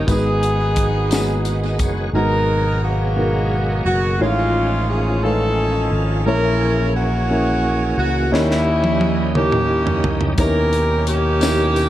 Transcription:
0.07 G#1 G#2 D#3 G#3 B3 D#4 F#4 B4, kick, closed hi-hat, tambourine
0.11 B3 G#4
0.43 closed hi-hat
0.76 kick, closed hi-hat
1.10 G#3 A#3 D#4 F#4 G#4, snare, closed hi-hat, tambourine
1.17 B3
1.45 F#5, closed hi-hat, tambourine
1.63 D#5
1.79 F#1 C#5, kick, closed hi-hat, tambourine
2.13 G#1 G#2 B2 F#3 G#3 B3 D#4 F#4 G#4 A#4
2.84 A#3 B3 F#4
3.16 B2 G#3 D#4 F#4 A#4
3.86 F#1 F#4
4.18 A1 A2 D#3 G#3 C#4 D#4 F4 G#4 C#5
4.22 F3 G#3 C#4
4.89 G#4
5.23 G#3 C#4 D#4 F4 A4 B4 G#5
5.29 A3
5.91 G#1
6.24 A#1 A#2 E3 A#3 C#4 E4 G#4 A#4 C#5
6.95 C#4 F#4
7.30 A#3 C#4 E4 G#4 A#4
7.98 C#2 F#4
8.31 D#2 D#3 G3 A#3 C#4 E4 G4 C#5 D#5, snare
8.51 snare
8.84 high tom
9.01 high tom
9.34 A#3 C#4 D#4 E4 G4 C#5, mid tom
9.52 mid tom
9.87 floor tom
10.04 C#2, floor tom
10.21 floor tom
10.38 D#2 B2 D#3 B3 C#4 D#4 E4 G4 A#4 C#5, kick, closed hi-hat, tambourine
10.73 closed hi-hat
11.07 A#3 C#4 G4, closed hi-hat
11.40 B2 D#4 E4 G4 C#5, snare, closed hi-hat, tambourine
11.76 closed hi-hat, tambourine

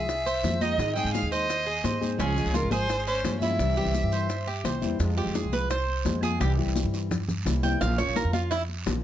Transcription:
Already playing: C2 G#4 E5
0.08 muted steel-string acoustic guitar stroke, high bongo, high conga, long guiro, maracas
0.26 C5, high conga, maracas
0.43 F2 F3 G#3 C4 F4, high bongo, low bongo, high conga, short guiro, maracas
0.61 F3 G#3 C4 D#4 F4 D#5, high conga, short guiro, maracas
0.78 G#2 D#3 G#3 C4 D#4 G#4, high bongo, long guiro, maracas
0.96 G#3 C4 D#4 G#4 G5, high bongo, high conga, maracas
1.04 G#2
1.14 F5, high bongo, high conga, short guiro, maracas
1.22 D#2
1.32 C5 D#5, high bongo, high conga, short guiro, maracas
1.49 muted steel-string acoustic guitar stroke, high bongo, high conga, long guiro, maracas
1.66 G#4, high conga
1.84 G#2 G#3 C4 D#4 G#4 C5, high bongo, low bongo, high conga, short guiro, maracas
2.01 G#3 C4 D#4 G#4, high bongo, high conga, short guiro, maracas
2.19 C#2 C#3 F3 G#3 C#4 F4 G#4, high bongo, high conga, long guiro, maracas
2.36 F3 G#3 C#4 F4, high conga, maracas
2.45 C#2
2.54 F4 A#4, high bongo, high conga, short guiro, maracas
2.63 G#1
2.71 G#4 C5, high conga, short guiro, maracas
2.89 muted steel-string acoustic guitar stroke, high bongo, high conga, long guiro, maracas
3.07 C#4 C5, high conga, maracas
3.24 G2 F3 G#3 C#4 F4, high bongo, low bongo, high conga, short guiro, maracas
3.42 F3 G#3 C#4 E4 F4 E5, high conga, short guiro, maracas
3.59 C2 C3 E3 G3 C4 E4, high bongo, high conga, long guiro, maracas
3.77 E3 G3 C4 E4 G4, high bongo, high conga
3.85 C2
3.94 high bongo, high conga, short guiro, maracas
4.03 G2
4.12 C5, high bongo, high conga, short guiro, maracas
4.29 muted steel-string acoustic guitar stroke, high bongo, high conga, long guiro, maracas
4.47 G4, high conga
4.64 C2 E3 G3 C4 E4 C5, high bongo, low bongo, high conga, short guiro, maracas
4.82 E2 E3 G3 C4 E4, high bongo, high conga, short guiro, maracas
4.99 F2 C3 F3 G#3 C4 F4, high bongo, high conga, long guiro, maracas
5.17 F3 G#3 C4 F4 G4, high conga
5.26 F2
5.35 G#4, high bongo, high conga, short guiro, maracas
5.44 C2
5.53 B4, high conga, short guiro, maracas
5.69 C5, muted steel-string acoustic guitar stroke, high bongo, high conga, long guiro, maracas
5.88 high conga
6.05 F2 F3 G#3 C4 F4, high bongo, low bongo, high conga, short guiro, maracas
6.22 F3 G#3 C4 F4 G#4, high conga, short guiro, maracas
6.40 C2 C3 E3 G3 C4 E4 G4, high bongo, high conga, long guiro, maracas
6.58 E3 G3 C4 E4, high bongo, high conga
6.66 C2
6.76 high bongo, high conga, short guiro, maracas
6.84 G2
6.93 high bongo, high conga, short guiro, maracas
7.11 muted steel-string acoustic guitar stroke, high bongo, high conga, low conga, long guiro, maracas
7.28 high conga, low conga, maracas
7.46 C2 E3 G3 C4 E4, high bongo, low bongo, high conga, short guiro, maracas
7.63 E3 G3 C4 E4 G5, high bongo, high conga, short guiro, maracas
7.81 A#1 F3 A#3 C#4 F4 F5, high bongo, high conga, long guiro, maracas
7.98 A#3 C#4 F4 C#5, high conga, maracas
8.07 A#1
8.16 A#4, high bongo, high conga, short guiro, maracas
8.24 F2
8.33 F4, high conga, short guiro, maracas
8.51 E4, muted steel-string acoustic guitar stroke, high bongo, high conga, long guiro, maracas
8.69 high conga
8.86 A#1 F3 A#3 C#4 F4, high bongo, low bongo, high conga, short guiro, maracas

